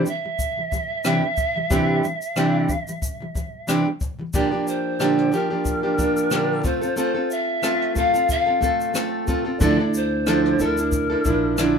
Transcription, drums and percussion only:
0.06 shaker soft
0.39 kick medium
0.39 shaker medium
0.72 kick medium
0.72 shaker soft
1.04 cross-stick loud
1.04 shaker medium
1.37 kick medium
1.37 shaker soft
1.71 kick loud
1.71 shaker medium
2.04 shaker soft
2.22 shaker soft
2.36 cross-stick medium
2.36 shaker medium
2.69 kick medium
2.69 shaker soft
2.88 shaker soft
3.02 kick medium
3.02 shaker medium
3.35 kick medium
3.35 shaker soft
3.68 cross-stick medium
3.68 shaker medium
4.01 kick medium
4.01 shaker soft
4.34 kick loud
4.34 shaker medium
4.68 shaker soft
5.00 cross-stick medium
5.00 shaker medium
5.18 cross-stick soft
5.33 shaker soft
5.65 kick medium
5.65 shaker medium
5.99 kick medium
5.99 shaker soft
6.17 shaker soft
6.31 cross-stick loud
6.31 shaker medium
6.64 kick medium
6.64 shaker soft
6.82 shaker soft
6.97 shaker medium
7.31 shaker soft
7.63 cross-stick loud
7.63 shaker medium
7.81 cross-stick soft
7.96 kick medium
7.96 shaker soft
8.15 shaker soft
8.29 kick medium
8.29 shaker medium
8.62 kick medium
8.62 shaker soft
8.81 shaker soft
8.95 cross-stick loud
8.95 shaker medium
9.27 kick medium
9.27 shaker soft
9.61 kick loud
9.61 shaker medium
9.94 shaker medium
10.27 cross-stick loud
10.27 shaker medium
10.45 cross-stick soft
10.59 shaker soft
10.78 shaker soft
10.92 kick medium
10.92 shaker medium
11.25 kick medium
11.25 shaker medium
11.58 cross-stick loud
11.58 shaker medium

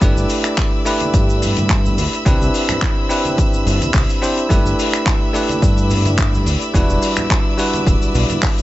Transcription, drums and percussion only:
0.01 kick loud
0.01 closed hi-hat medium
0.01 shaker medium
0.17 shaker soft
0.30 open hi-hat loud
0.30 shaker medium
0.44 finger snap medium
0.44 closed hi-hat medium
0.44 shaker medium
0.58 kick loud
0.58 clap loud
0.58 closed hi-hat medium
0.58 shaker medium
0.86 open hi-hat loud
0.86 shaker medium
1.00 closed hi-hat medium
1.00 high conga medium
1.00 shaker medium
1.14 kick loud
1.14 closed hi-hat medium
1.14 shaker medium
1.30 shaker medium
1.42 open hi-hat loud
1.42 low conga medium
1.42 shaker medium
1.57 closed hi-hat medium
1.57 high conga loud
1.57 shaker soft
1.70 kick loud
1.70 clap loud
1.70 closed hi-hat medium
1.70 shaker medium
1.85 low conga medium
1.85 shaker soft
1.98 open hi-hat loud
1.98 shaker medium
2.13 closed hi-hat medium
2.13 shaker soft
2.26 kick loud
2.26 closed hi-hat medium
2.26 shaker medium
2.42 shaker soft
2.54 open hi-hat loud
2.54 shaker medium
2.69 finger snap medium
2.69 closed hi-hat medium
2.69 low conga medium
2.69 shaker soft
2.82 kick loud
2.82 clap loud
2.82 closed hi-hat medium
2.82 shaker medium
3.10 open hi-hat loud
3.10 shaker medium
3.25 closed hi-hat medium
3.25 high conga medium
3.25 shaker medium
3.38 kick loud
3.38 closed hi-hat medium
3.38 shaker medium
3.54 shaker soft
3.67 open hi-hat loud
3.67 shaker medium
3.81 closed hi-hat medium
3.81 high conga medium
3.81 low conga medium
3.81 shaker medium
3.94 kick loud
3.94 clap loud
3.94 open hi-hat medium
3.94 shaker medium
4.10 shaker soft
4.22 open hi-hat loud
4.22 shaker medium
4.38 closed hi-hat medium
4.38 shaker soft
4.50 kick loud
4.50 closed hi-hat medium
4.50 shaker medium
4.66 shaker soft
4.79 open hi-hat loud
4.79 shaker medium
4.93 finger snap medium
4.93 closed hi-hat medium
4.93 shaker medium
5.06 kick loud
5.06 clap loud
5.06 closed hi-hat medium
5.06 shaker medium
5.34 open hi-hat loud
5.34 shaker medium
5.49 closed hi-hat medium
5.49 high conga medium
5.49 shaker medium
5.62 kick loud
5.62 closed hi-hat medium
5.62 shaker medium
5.78 shaker soft
5.90 open hi-hat loud
5.90 low conga medium
5.90 shaker medium
6.05 closed hi-hat medium
6.05 high conga medium
6.05 shaker medium
6.18 kick loud
6.18 clap loud
6.18 closed hi-hat medium
6.18 shaker medium
6.34 low conga medium
6.34 shaker soft
6.46 open hi-hat loud
6.46 shaker medium
6.61 closed hi-hat medium
6.61 shaker medium
6.74 kick loud
6.74 closed hi-hat medium
6.74 shaker medium
6.90 shaker medium
7.02 open hi-hat loud
7.02 shaker medium
7.17 finger snap medium
7.17 closed hi-hat medium
7.17 low conga medium
7.17 shaker medium
7.30 kick loud
7.30 clap loud
7.30 closed hi-hat medium
7.30 shaker medium
7.58 open hi-hat loud
7.58 shaker medium
7.73 closed hi-hat medium
7.73 high conga medium
7.73 shaker soft
7.87 kick loud
7.87 closed hi-hat medium
7.87 shaker medium
8.02 shaker medium
8.15 open hi-hat loud
8.15 shaker medium
8.29 closed hi-hat medium
8.29 high conga medium
8.29 low conga medium
8.29 shaker soft
8.43 kick loud
8.43 clap loud
8.43 open hi-hat medium
8.43 shaker medium
8.58 shaker medium

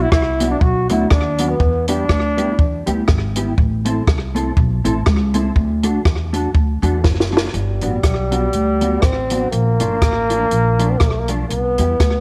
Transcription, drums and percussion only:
0.12 kick loud
0.12 cross-stick loud
0.40 closed hi-hat medium
0.61 kick loud
0.89 closed hi-hat medium
1.10 kick loud
1.10 cross-stick loud
1.38 closed hi-hat medium
1.60 kick loud
1.88 closed hi-hat medium
2.09 kick loud
2.09 cross-stick loud
2.38 closed hi-hat medium
2.59 kick loud
2.87 closed hi-hat medium
3.08 kick loud
3.08 cross-stick loud
3.36 closed hi-hat loud
3.58 kick loud
3.85 closed hi-hat medium
4.07 kick loud
4.07 cross-stick loud
4.36 closed hi-hat medium
4.57 kick loud
4.85 closed hi-hat medium
5.06 kick loud
5.06 cross-stick loud
5.34 closed hi-hat medium
5.56 kick loud
5.83 closed hi-hat medium
6.05 kick loud
6.05 cross-stick loud
6.34 closed hi-hat medium
6.55 kick loud
6.83 closed hi-hat medium
7.04 kick loud
7.04 snare medium
7.20 snare medium
7.37 snare loud
7.54 closed hi-hat medium
7.81 closed hi-hat medium
8.03 kick loud
8.03 cross-stick loud
8.03 closed hi-hat medium
8.32 closed hi-hat medium
8.53 closed hi-hat medium
8.81 closed hi-hat medium
9.02 kick loud
9.02 cross-stick loud
9.02 closed hi-hat medium
9.30 closed hi-hat medium
9.52 closed hi-hat medium
9.80 closed hi-hat medium
10.02 kick loud
10.02 cross-stick loud
10.02 closed hi-hat medium
10.30 closed hi-hat medium
10.51 closed hi-hat medium
10.79 closed hi-hat medium
11.00 kick loud
11.00 cross-stick medium
11.00 closed hi-hat medium
11.28 closed hi-hat medium
11.50 closed hi-hat medium
11.78 closed hi-hat medium
12.00 kick loud
12.00 cross-stick loud
12.00 closed hi-hat medium

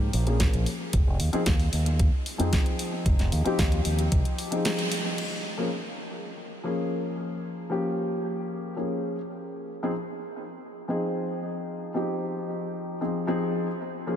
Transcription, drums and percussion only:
0.13 open hi-hat loud
0.27 closed hi-hat soft
0.40 kick loud
0.40 snare loud
0.40 closed hi-hat medium
0.53 closed hi-hat soft
0.66 open hi-hat loud
0.93 kick loud
0.93 closed hi-hat medium
1.20 open hi-hat loud
1.33 closed hi-hat soft
1.46 kick loud
1.46 snare loud
1.46 closed hi-hat medium
1.60 open hi-hat medium
1.73 open hi-hat loud
1.86 closed hi-hat medium
1.99 kick loud
1.99 closed hi-hat medium
2.26 open hi-hat medium
2.40 closed hi-hat medium
2.53 kick loud
2.53 snare loud
2.53 closed hi-hat medium
2.66 closed hi-hat soft
2.79 open hi-hat loud
3.06 kick loud
3.06 closed hi-hat medium
3.19 snare soft
3.19 closed hi-hat soft
3.32 open hi-hat loud
3.46 closed hi-hat soft
3.59 kick loud
3.59 snare loud
3.59 closed hi-hat medium
3.72 closed hi-hat soft
3.85 open hi-hat loud
3.99 closed hi-hat medium
4.12 kick loud
4.12 closed hi-hat medium
4.25 closed hi-hat soft
4.38 open hi-hat loud
4.52 closed hi-hat medium
4.65 snare loud
4.65 closed hi-hat medium
4.79 closed hi-hat soft
4.92 open hi-hat loud
5.18 crash medium

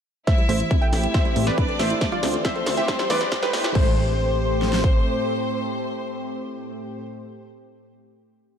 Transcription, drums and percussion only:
0.27 kick loud
0.27 snare soft
0.27 closed hi-hat soft
0.38 closed hi-hat soft
0.49 open hi-hat loud
0.60 closed hi-hat soft
0.71 kick loud
0.71 closed hi-hat medium
0.82 closed hi-hat soft
0.93 snare medium
0.93 open hi-hat loud
1.03 closed hi-hat medium
1.14 kick loud
1.14 snare medium
1.14 closed hi-hat medium
1.25 closed hi-hat soft
1.36 open hi-hat medium
1.47 snare medium
1.47 closed hi-hat medium
1.58 kick loud
1.58 closed hi-hat medium
1.69 closed hi-hat soft
1.79 snare medium
1.79 open hi-hat loud
1.90 closed hi-hat medium
2.01 kick loud
2.01 snare medium
2.01 closed hi-hat soft
2.12 closed hi-hat soft
2.23 snare medium
2.23 open hi-hat loud
2.34 closed hi-hat soft
2.45 kick loud
2.45 snare medium
2.45 closed hi-hat soft
2.56 closed hi-hat soft
2.66 snare medium
2.66 open hi-hat loud
2.77 closed hi-hat medium
2.88 kick loud
2.88 snare medium
2.88 closed hi-hat medium
2.99 snare medium
2.99 closed hi-hat soft
3.10 snare loud
3.10 open hi-hat loud
3.21 snare medium
3.21 closed hi-hat medium
3.32 kick loud
3.32 snare loud
3.32 closed hi-hat soft
3.43 snare loud
3.43 closed hi-hat soft
3.53 snare loud
3.53 open hi-hat loud
3.64 snare medium
3.64 closed hi-hat medium
3.75 kick loud
3.75 crash medium
4.62 snare medium
4.73 snare medium
4.84 kick medium

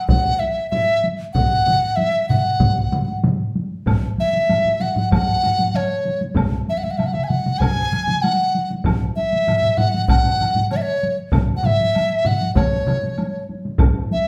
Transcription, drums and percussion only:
0.09 taiko medium
0.09 taiko low-mid medium
0.09 taiko high medium
0.25 taiko high soft
0.40 taiko high soft
0.72 taiko low-mid medium
0.72 taiko high medium
0.88 taiko high soft
1.04 taiko high soft
1.20 taiko high soft
1.35 taiko medium
1.35 taiko low-mid medium
1.35 taiko mid medium
1.35 taiko high soft
1.50 taiko high soft
1.67 taiko low-mid medium
1.67 taiko mid medium
1.67 taiko high soft
1.97 taiko high medium
2.14 taiko high soft
2.29 taiko low-mid medium
2.29 taiko mid medium
2.29 taiko high soft
2.44 taiko high soft
2.60 taiko medium
2.60 taiko low-mid medium
2.60 taiko mid medium
2.60 taiko high medium
2.77 taiko high soft
2.92 taiko low-mid medium
2.92 taiko mid medium
2.92 taiko high medium
3.09 taiko high soft
3.24 taiko low-mid medium
3.24 taiko mid medium
3.24 taiko high medium
3.40 taiko high soft
3.56 taiko high medium
3.72 taiko high soft
3.86 taiko medium
3.86 taiko low-mid medium
3.86 taiko high medium
3.86 high woodblock medium
4.18 taiko high medium
4.33 taiko high medium
4.50 taiko low-mid medium
4.50 taiko high medium
4.50 high woodblock soft
4.65 taiko low-mid medium
4.80 taiko low-mid medium
4.80 taiko high soft
4.96 taiko low-mid medium
4.96 taiko high soft
5.11 taiko medium
5.11 taiko low-mid medium
5.11 taiko high medium
5.11 high woodblock medium
5.43 taiko low-mid medium
5.43 taiko high soft
5.43 high woodblock soft
5.58 taiko low-mid medium
5.58 taiko high soft
5.75 taiko high medium
5.75 high woodblock soft
6.05 taiko high soft
6.21 taiko high medium
6.36 taiko loud
6.36 taiko mid medium
6.36 taiko high medium
6.36 high woodblock medium
6.68 taiko high soft
6.84 taiko high soft
6.98 taiko mid medium
6.98 taiko high medium
6.98 high woodblock soft
7.14 taiko mid medium
7.30 taiko mid medium
7.30 taiko high soft
7.46 taiko mid medium
7.46 taiko high medium
7.60 taiko medium
7.60 taiko mid medium
7.60 taiko high medium
7.60 high woodblock medium
7.92 taiko mid medium
7.92 taiko high soft
7.92 high woodblock soft
8.07 taiko mid medium
8.07 taiko high medium
8.24 taiko high medium
8.24 high woodblock soft
8.55 taiko high soft
8.70 taiko high medium
8.84 taiko medium
8.84 taiko low-mid medium
8.84 taiko high medium
8.84 high woodblock medium
9.17 taiko high soft
9.33 taiko high medium
9.47 taiko low-mid medium
9.47 taiko high medium
9.47 high woodblock soft
9.63 taiko low-mid medium
9.78 taiko low-mid medium
9.78 taiko high soft
9.94 taiko high soft
10.08 taiko medium
10.08 taiko low-mid medium
10.08 taiko high medium
10.08 high woodblock medium
10.25 taiko low-mid medium
10.41 taiko low-mid medium
10.41 taiko high soft
10.41 high woodblock soft
10.55 taiko low-mid medium
10.55 taiko high soft
10.71 taiko high medium
10.71 high woodblock soft
11.03 taiko high soft
11.32 taiko loud
11.32 taiko low-mid loud
11.32 taiko mid medium
11.32 taiko high medium
11.32 high woodblock medium
11.63 taiko low-mid medium
11.63 taiko mid medium
11.63 taiko high soft
11.81 taiko high soft
11.95 taiko high medium
11.95 high woodblock soft
12.25 taiko low-mid medium
12.25 taiko mid medium
12.25 taiko high soft
12.42 taiko high soft
12.55 taiko loud
12.55 taiko low-mid medium
12.55 taiko mid medium
12.55 taiko high medium
12.55 high woodblock medium
12.87 taiko low-mid loud
12.87 taiko mid medium
12.87 high woodblock soft
13.03 taiko high medium
13.18 taiko high medium
13.18 high woodblock soft
13.49 taiko high soft
13.65 taiko high medium
13.78 taiko loud
13.78 taiko low-mid medium
13.78 taiko high medium
13.78 high woodblock soft
14.11 taiko high medium

